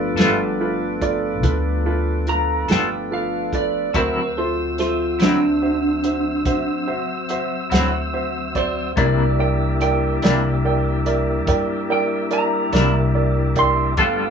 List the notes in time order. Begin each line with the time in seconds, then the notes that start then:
Already playing: G1 F3 A3 B3 D4
0.16 G1 G3 B3 F4 A4 B4, snare, closed hi-hat
0.60 F4 A4 B4
1.01 F4 A4 D5, kick, closed hi-hat
1.43 D2 F4 A4 B4, kick, closed hi-hat
1.86 F4 A4 B4
2.27 A3 F4 B4 A#5, closed hi-hat
2.68 G1 G3 B3 F4 A4 B4 G5, snare, closed hi-hat
3.11 F4 A4 B4 F5
3.53 F4 A4 B4 D5, kick, closed hi-hat
3.93 D2 D3 F#3 C4 E4 F#4 A#4 C5 E5, kick, closed hi-hat
4.37 F4 A4 C5 E5
4.78 F4 A4 C5 E5, snare, closed hi-hat
5.19 D2 D3 F#3 C4 D4 E4 F#4 C5 E5, snare, closed hi-hat
5.62 F#4 C5 E5
6.04 F#4 C5 E5, closed hi-hat
6.45 A1 F#4 C5 E5, kick, closed hi-hat
6.87 F#4 C5 E5
7.29 F#4 C5 E5, closed hi-hat
7.70 D2 D3 F#3 C4 E4 F#4 C5 F#5, closed hi-hat
7.74 snare
8.13 F#4 C5 E5
8.55 F#4 C5 D5, kick, closed hi-hat
8.96 C2 C3 G3 A#3 D4 E4 A#4 D5 E5, kick, closed hi-hat
9.39 A#4 D5 E5 G5
9.81 A#4 D5 G5, closed hi-hat
10.22 C2 C3 A#3 D4 E4 A#4 D5 G5, snare, closed hi-hat
10.65 A#4 D5 G5
11.06 A#4 D5 E5, closed hi-hat
11.47 G2 A#4 D5 G5, kick, closed hi-hat
11.90 A#4 D5 G5
12.31 A#4 D5 E5 A#5, closed hi-hat
12.72 C2 C3 A#3 D4 E4 A#4 D5 E5, snare, closed hi-hat
13.15 A#4 D5 E5
13.56 A#4 D5 G5 C6, kick, closed hi-hat
13.97 G1 G3 A3 B3 D4 F4 A4 B4 F5, kick, closed hi-hat
14.02 G5